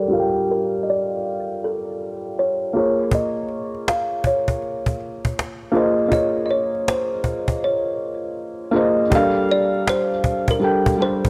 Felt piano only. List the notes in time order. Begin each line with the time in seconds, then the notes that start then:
Already playing: G3 G4 A4 A#4 D5
0.08 G3 F4 G4 A#4
0.13 F5
0.19 G5
2.73 A#3 F4 G#4 A#4
2.78 C#5
5.72 A#3 F4 G#4 C5
5.76 D#5
6.08 A#3 F4 G#4 A#4
6.13 C#5
8.71 A#3 F4 G#4 C5
8.76 D#5
9.10 G3 D4 A4 A#4
9.15 F5
10.59 G3 D4 A4 A#4
10.64 G5
10.97 G3 D4 A4 A#4
11.02 C5